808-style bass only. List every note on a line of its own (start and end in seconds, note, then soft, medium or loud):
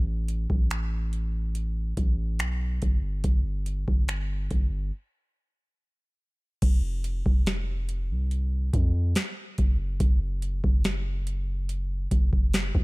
0.00 0.47 A1 loud
0.50 1.94 A1 loud
1.97 2.41 A1 loud
2.40 2.80 B1 medium
2.83 3.23 G1 loud
3.24 3.85 G1 loud
3.88 4.49 G1 loud
4.51 4.92 G1 loud
6.63 7.23 F1 loud
7.26 8.12 F1 loud
8.11 8.71 C2 loud
8.74 9.14 F2 loud
9.59 9.99 F#1 loud
10.00 10.61 F#1 loud
10.64 12.08 F#1 loud
12.12 12.72 F#1 loud
12.75 12.84 C#2 loud